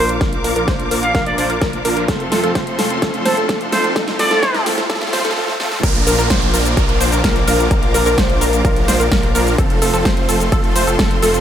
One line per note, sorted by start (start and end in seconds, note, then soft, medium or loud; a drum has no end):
0.00 0.19 A#1 loud
0.00 0.18 F3 loud
0.00 0.18 A#3 medium
0.00 0.18 D4 loud
0.00 0.18 F4 medium
0.00 0.18 A#4 loud
0.00 2.05 A#4 medium
0.00 0.11 C5 medium
0.00 5.33 F5 medium
0.00 2.05 D6 medium
0.00 riser medium
0.09 closed hi-hat soft
0.21 0.42 A#1 loud
0.21 0.42 F3 medium
0.21 0.42 A#3 medium
0.21 0.42 D4 medium
0.21 0.42 F4 medium
0.21 0.42 A#4 medium
0.21 kick loud
0.21 snare medium
0.21 closed hi-hat medium
0.33 closed hi-hat soft
0.44 0.54 A#1 medium
0.44 0.53 F3 medium
0.44 0.53 A#3 medium
0.44 0.53 D4 medium
0.44 0.53 F4 medium
0.44 0.53 A#4 loud
0.44 open hi-hat loud
0.56 0.65 A#1 loud
0.56 0.66 F3 loud
0.56 0.66 A#3 medium
0.56 0.66 D4 medium
0.56 0.66 F4 medium
0.56 0.66 A#4 loud
0.56 closed hi-hat soft
0.68 0.89 A#1 loud
0.68 0.88 F3 medium
0.68 0.88 A#3 medium
0.68 0.88 D4 medium
0.68 0.88 F4 medium
0.68 0.88 C5 loud
0.68 kick loud
0.68 snare medium
0.68 closed hi-hat medium
0.80 closed hi-hat soft
0.91 1.12 A#1 loud
0.91 1.12 F3 medium
0.91 1.12 A#3 medium
0.91 1.12 D4 medium
0.91 1.12 F4 medium
0.91 1.12 A#4 medium
0.91 open hi-hat loud
1.03 1.10 F5 medium
1.03 closed hi-hat soft
1.15 1.36 A#1 loud
1.15 1.35 F3 loud
1.15 1.35 A#3 medium
1.15 1.35 D4 medium
1.15 1.35 F4 medium
1.15 1.35 A#4 loud
1.15 1.22 F5 medium
1.15 kick loud
1.15 snare medium
1.15 closed hi-hat medium
1.26 1.34 D5 medium
1.26 closed hi-hat soft
1.38 1.47 A#1 medium
1.38 1.47 F3 loud
1.38 1.47 A#3 medium
1.38 1.47 D4 medium
1.38 1.47 F4 medium
1.38 1.47 C5 loud
1.38 1.46 D5 medium
1.38 open hi-hat loud
1.50 1.59 A#1 loud
1.50 1.59 F3 medium
1.50 1.59 A#3 medium
1.50 1.59 D4 medium
1.50 1.59 F4 medium
1.50 1.59 A#4 medium
1.50 closed hi-hat soft
1.62 1.83 A#1 loud
1.62 1.78 F3 medium
1.62 1.78 A#3 medium
1.62 1.78 D4 medium
1.62 1.78 F4 medium
1.62 1.78 A#4 loud
1.62 kick loud
1.62 snare medium
1.62 closed hi-hat medium
1.73 closed hi-hat soft
1.85 2.06 A#1 loud
1.85 2.06 F3 loud
1.85 2.06 A#3 medium
1.85 2.06 D4 loud
1.85 2.06 F4 medium
1.85 2.06 A#4 loud
1.85 open hi-hat loud
1.97 closed hi-hat soft
2.08 2.30 F1 loud
2.08 2.29 F3 medium
2.08 2.29 A3 medium
2.08 2.29 C4 medium
2.08 2.29 F4 medium
2.08 2.29 A4 medium
2.08 5.33 A4 medium
2.08 2.29 A4 loud
2.08 5.33 C6 medium
2.08 kick loud
2.08 snare medium
2.08 closed hi-hat medium
2.20 closed hi-hat soft
2.32 2.41 F1 loud
2.32 2.41 F3 medium
2.32 2.41 A3 medium
2.32 2.41 C4 medium
2.32 2.41 F4 medium
2.32 2.41 A4 loud
2.32 snare medium
2.32 open hi-hat loud
2.44 2.53 F1 loud
2.44 2.54 F3 loud
2.44 2.54 A3 medium
2.44 2.54 C4 medium
2.44 2.54 F4 medium
2.44 2.54 A4 loud
2.44 closed hi-hat soft
2.55 2.76 F1 medium
2.55 2.76 F3 loud
2.55 2.76 A3 medium
2.55 2.76 C4 medium
2.55 2.76 F4 medium
2.55 2.76 C5 loud
2.55 kick loud
2.55 snare medium
2.55 closed hi-hat medium
2.67 closed hi-hat soft
2.79 3.00 F1 loud
2.79 2.99 F3 medium
2.79 2.99 A3 medium
2.79 2.99 C4 medium
2.79 2.99 F4 medium
2.79 2.99 A4 medium
2.79 snare medium
2.79 open hi-hat loud
2.90 closed hi-hat soft
3.02 3.23 F1 loud
3.02 3.23 F3 loud
3.02 3.23 A3 medium
3.02 3.23 C4 medium
3.02 3.23 F4 medium
3.02 3.23 A4 loud
3.02 kick loud
3.02 snare medium
3.02 closed hi-hat medium
3.14 closed hi-hat soft
3.26 3.35 F1 loud
3.26 3.35 F3 loud
3.26 3.35 A3 medium
3.26 3.35 C4 medium
3.26 3.35 F4 medium
3.26 3.39 A4 medium
3.26 3.35 C5 loud
3.26 snare medium
3.26 open hi-hat loud
3.37 3.47 F1 loud
3.37 3.46 F3 medium
3.37 3.46 A3 medium
3.37 3.46 C4 medium
3.37 3.46 F4 medium
3.37 3.46 A4 medium
3.37 closed hi-hat soft
3.49 3.70 F1 loud
3.49 3.66 F3 loud
3.49 3.66 A3 medium
3.49 3.66 C4 medium
3.49 3.66 F4 medium
3.49 3.66 A4 loud
3.49 kick loud
3.49 snare medium
3.49 closed hi-hat medium
3.61 closed hi-hat soft
3.72 3.94 F1 loud
3.72 3.93 F3 loud
3.72 3.93 A3 loud
3.72 3.93 C4 medium
3.72 3.93 F4 loud
3.72 3.93 A4 loud
3.72 3.86 C5 medium
3.72 snare medium
3.72 open hi-hat loud
3.84 closed hi-hat soft
3.96 4.17 F1 loud
3.96 4.17 F3 medium
3.96 4.17 A3 medium
3.96 4.17 C4 medium
3.96 4.17 F4 medium
3.96 4.17 A4 loud
3.96 kick loud
3.96 snare medium
3.96 closed hi-hat medium
4.08 snare medium
4.08 closed hi-hat soft
4.19 4.29 F1 medium
4.19 4.28 F3 medium
4.19 4.28 A3 medium
4.19 4.28 C4 medium
4.19 4.28 F4 medium
4.19 4.28 A4 loud
4.19 4.66 D5 loud
4.19 snare loud
4.19 open hi-hat loud
4.31 4.40 F1 loud
4.31 4.41 F3 loud
4.31 4.41 A3 medium
4.31 4.41 C4 medium
4.31 4.41 F4 medium
4.31 4.41 A4 loud
4.31 snare medium
4.31 closed hi-hat soft
4.43 4.64 F1 loud
4.43 4.63 F3 medium
4.43 4.63 A3 medium
4.43 4.63 C4 medium
4.43 4.63 F4 medium
4.43 4.63 C5 loud
4.43 kick loud
4.43 snare medium
4.43 closed hi-hat medium
4.54 snare medium
4.54 closed hi-hat soft
4.66 4.87 F1 loud
4.66 4.87 F3 medium
4.66 4.87 A3 medium
4.66 4.87 C4 medium
4.66 4.87 F4 medium
4.66 4.87 A4 medium
4.66 snare medium
4.66 open hi-hat loud
4.78 snare medium
4.78 closed hi-hat soft
4.90 5.11 F1 medium
4.90 5.10 F3 loud
4.90 5.10 A3 loud
4.90 5.10 C4 medium
4.90 5.10 F4 loud
4.90 5.10 A4 loud
4.90 kick loud
4.90 snare loud
4.90 closed hi-hat medium
4.95 snare medium
5.01 snare medium
5.01 closed hi-hat soft
5.07 snare medium
5.13 5.22 F1 loud
5.13 5.22 F3 loud
5.13 5.22 A3 medium
5.13 5.22 C4 medium
5.13 5.22 F4 medium
5.13 5.22 C5 loud
5.13 snare loud
5.13 open hi-hat loud
5.19 snare loud
5.25 5.34 F1 loud
5.25 5.34 F3 medium
5.25 5.34 A3 medium
5.25 5.34 C4 medium
5.25 5.34 F4 medium
5.25 5.34 A4 medium
5.25 snare medium
5.25 closed hi-hat soft
5.31 snare loud
5.37 5.53 F3 loud
5.37 5.53 A3 medium
5.37 5.53 C4 medium
5.37 5.53 F4 medium
5.37 5.53 A4 loud
5.37 snare medium
5.48 snare medium
5.60 5.81 F3 loud
5.60 5.81 A3 loud
5.60 5.81 C4 medium
5.60 5.81 F4 medium
5.60 5.81 A4 loud
5.60 snare medium
5.72 snare medium
5.83 6.05 A#1 loud
5.83 6.04 F3 medium
5.83 6.04 A#3 medium
5.83 6.04 D4 medium
5.83 6.04 F4 medium
5.83 6.04 A#4 medium
5.83 9.55 A#4 medium
5.83 6.04 A#4 loud
5.83 11.40 F5 medium
5.83 9.55 D6 medium
5.83 kick loud
5.83 closed hi-hat medium
5.83 crash loud
5.83 downlifter medium
5.83 cabasa soft
5.95 closed hi-hat soft
6.07 6.16 A#1 loud
6.07 6.16 F3 loud
6.07 6.16 A#3 medium
6.07 6.16 D4 medium
6.07 6.16 F4 medium
6.07 6.16 A#4 loud
6.07 open hi-hat loud
6.07 cabasa medium
6.19 6.28 A#1 loud
6.19 6.29 F3 loud
6.19 6.29 A#3 medium
6.19 6.29 D4 medium
6.19 6.29 F4 medium
6.19 6.29 A#4 loud
6.19 closed hi-hat soft
6.19 cabasa soft
6.30 6.51 A#1 loud
6.30 6.51 F3 medium
6.30 6.51 A#3 medium
6.30 6.51 D4 medium
6.30 6.51 F4 medium
6.30 6.51 C5 loud
6.30 kick loud
6.30 snare loud
6.30 closed hi-hat medium
6.30 cabasa soft
6.42 closed hi-hat soft
6.54 6.75 A#1 loud
6.54 6.74 F3 medium
6.54 6.74 A#3 medium
6.54 6.74 D4 medium
6.54 6.74 F4 medium
6.54 6.74 A#4 medium
6.54 open hi-hat loud
6.54 cabasa medium
6.65 closed hi-hat soft
6.65 cabasa soft
6.77 6.98 A#1 loud
6.77 6.98 F3 loud
6.77 6.98 A#3 medium
6.77 6.98 D4 medium
6.77 6.98 F4 medium
6.77 6.98 A#4 loud
6.77 kick loud
6.77 closed hi-hat medium
6.77 cabasa soft
6.89 closed hi-hat soft
7.01 7.10 A#1 loud
7.01 7.10 F3 loud
7.01 7.10 A#3 medium
7.01 7.10 D4 medium
7.01 7.10 F4 medium
7.01 7.09 C5 loud
7.01 7.10 C5 loud
7.01 open hi-hat loud
7.01 cabasa medium
7.12 7.22 A#1 loud
7.12 7.21 F3 medium
7.12 7.21 A#3 medium
7.12 7.21 D4 medium
7.12 7.21 F4 medium
7.12 7.21 A#4 medium
7.12 closed hi-hat soft
7.12 cabasa soft
7.24 7.45 A#1 loud
7.24 7.41 F3 loud
7.24 7.41 A#3 medium
7.24 7.41 D4 medium
7.24 7.41 F4 medium
7.24 7.41 A#4 loud
7.24 kick loud
7.24 snare loud
7.24 closed hi-hat medium
7.24 cabasa soft
7.36 closed hi-hat soft
7.47 7.69 A#1 loud
7.47 7.68 F3 loud
7.47 7.68 A#3 loud
7.47 7.68 D4 loud
7.47 7.68 F4 medium
7.47 7.68 A#4 loud
7.47 open hi-hat loud
7.47 cabasa medium
7.59 closed hi-hat soft
7.59 cabasa soft
7.71 7.92 A#1 medium
7.71 7.92 F3 medium
7.71 7.92 A#3 medium
7.71 7.92 D4 medium
7.71 7.92 F4 medium
7.71 7.92 A#4 loud
7.71 7.92 A#4 medium
7.71 kick loud
7.71 closed hi-hat medium
7.71 cabasa soft
7.83 closed hi-hat soft
7.94 8.04 A#1 loud
7.94 8.03 F3 loud
7.94 8.03 A#3 medium
7.94 8.03 D4 medium
7.94 8.03 F4 medium
7.94 8.03 A#4 loud
7.94 open hi-hat loud
7.94 cabasa medium
8.06 8.15 A#1 loud
8.06 8.16 F3 loud
8.06 8.16 A#3 medium
8.06 8.16 D4 medium
8.06 8.16 F4 medium
8.06 8.16 A#4 loud
8.06 closed hi-hat soft
8.06 cabasa soft
8.18 8.39 A#1 loud
8.18 8.38 F3 loud
8.18 8.38 A#3 medium
8.18 8.38 D4 medium
8.18 8.38 F4 medium
8.18 8.38 C5 loud
8.18 kick loud
8.18 snare loud
8.18 closed hi-hat medium
8.18 cabasa soft
8.30 closed hi-hat soft
8.41 8.62 A#1 loud
8.41 8.62 F3 medium
8.41 8.62 A#3 medium
8.41 8.62 D4 medium
8.41 8.62 F4 medium
8.41 8.62 A#4 medium
8.41 open hi-hat loud
8.41 cabasa medium
8.53 closed hi-hat soft
8.53 cabasa soft
8.65 8.86 A#1 loud
8.65 8.85 F3 loud
8.65 8.85 A#3 medium
8.65 8.85 D4 medium
8.65 8.85 F4 loud
8.65 8.85 A#4 loud
8.65 kick loud
8.65 closed hi-hat medium
8.65 cabasa soft
8.76 closed hi-hat soft
8.88 8.98 A#1 medium
8.88 8.97 F3 loud
8.88 8.97 A#3 medium
8.88 8.97 D4 medium
8.88 8.97 F4 medium
8.88 8.97 C5 loud
8.88 snare medium
8.88 open hi-hat loud
8.88 cabasa medium
9.00 9.09 A#1 loud
9.00 9.09 F3 medium
9.00 9.09 A#3 medium
9.00 9.09 D4 medium
9.00 9.09 F4 medium
9.00 9.09 A#4 medium
9.00 closed hi-hat soft
9.00 cabasa soft
9.12 9.33 A#1 loud
9.12 9.28 F3 loud
9.12 9.28 A#3 medium
9.12 9.28 D4 medium
9.12 9.28 F4 medium
9.12 9.28 A#4 loud
9.12 kick loud
9.12 snare loud
9.12 closed hi-hat medium
9.12 cabasa soft
9.23 closed hi-hat soft
9.35 9.56 A#1 loud
9.35 9.56 F3 loud
9.35 9.56 A#3 loud
9.35 9.56 D4 loud
9.35 9.56 F4 medium
9.35 9.56 A#4 loud
9.35 open hi-hat loud
9.35 cabasa medium
9.47 closed hi-hat soft
9.47 cabasa soft
9.58 9.80 F1 medium
9.58 9.79 F3 medium
9.58 9.79 A3 medium
9.58 9.79 C4 medium
9.58 9.79 F4 medium
9.58 9.79 A4 medium
9.58 11.40 A4 medium
9.58 11.40 C6 medium
9.58 kick loud
9.58 closed hi-hat medium
9.58 cabasa soft
9.70 closed hi-hat soft
9.82 9.91 F1 loud
9.82 9.91 F3 loud
9.82 9.91 A3 medium
9.82 9.91 C4 medium
9.82 9.91 F4 medium
9.82 9.91 A4 loud
9.82 open hi-hat loud
9.82 cabasa medium
9.94 10.03 F1 loud
9.94 10.04 F3 loud
9.94 10.04 A3 loud
9.94 10.04 C4 medium
9.94 10.04 F4 medium
9.94 10.04 A4 loud
9.94 closed hi-hat soft
9.94 cabasa soft
10.05 10.26 F1 loud
10.05 10.26 F3 medium
10.05 10.26 A3 medium
10.05 10.26 C4 medium
10.05 10.26 F4 medium
10.05 10.26 C5 loud
10.05 kick loud
10.05 snare loud
10.05 closed hi-hat medium
10.05 cabasa soft
10.17 closed hi-hat soft
10.29 10.50 F1 loud
10.29 10.49 F3 medium
10.29 10.49 A3 medium
10.29 10.49 C4 medium
10.29 10.49 F4 medium
10.29 10.49 A4 medium
10.29 open hi-hat loud
10.29 cabasa medium
10.40 closed hi-hat soft
10.40 cabasa soft
10.52 10.73 F1 loud
10.52 10.73 F3 loud
10.52 10.73 A3 medium
10.52 10.73 C4 loud
10.52 10.73 F4 medium
10.52 10.73 A4 loud
10.52 kick loud
10.52 closed hi-hat medium
10.52 cabasa soft
10.64 closed hi-hat soft
10.76 10.85 F1 loud
10.76 10.85 F3 loud
10.76 10.85 A3 medium
10.76 10.85 C4 medium
10.76 10.85 F4 medium
10.76 10.85 C5 loud
10.76 open hi-hat loud
10.76 cabasa medium
10.87 10.97 F1 loud
10.87 10.96 F3 medium
10.87 10.96 A3 medium
10.87 10.96 C4 medium
10.87 10.96 F4 medium
10.87 10.96 A4 medium
10.87 closed hi-hat soft
10.87 cabasa soft
10.99 11.20 F1 loud
10.99 11.16 F3 loud
10.99 11.16 A3 medium
10.99 11.16 C4 medium
10.99 11.16 F4 medium
10.99 11.16 A4 loud
10.99 kick loud
10.99 snare loud
10.99 closed hi-hat medium
10.99 cabasa soft
11.11 closed hi-hat soft
11.22 11.40 F1 loud
11.22 11.40 F3 loud
11.22 11.40 A3 loud
11.22 11.40 C4 loud
11.22 11.40 F4 loud
11.22 11.40 A4 loud
11.22 open hi-hat loud
11.22 cabasa medium
11.34 closed hi-hat soft
11.34 cabasa soft